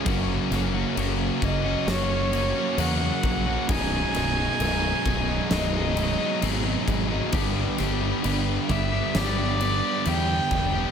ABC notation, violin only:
X:1
M:4/4
L:1/8
Q:1/4=66
K:F#mix
V:1 name="Violin"
z3 d c2 f2 | g4 d3 z | z3 e =d2 =g2 |]